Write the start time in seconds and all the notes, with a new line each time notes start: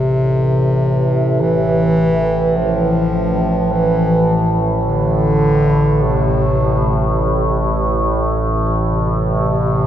Already playing: A1 A2 C3
1.41 E3
2.57 F3
3.72 E3
4.87 D3
6.02 C3
8.89 C3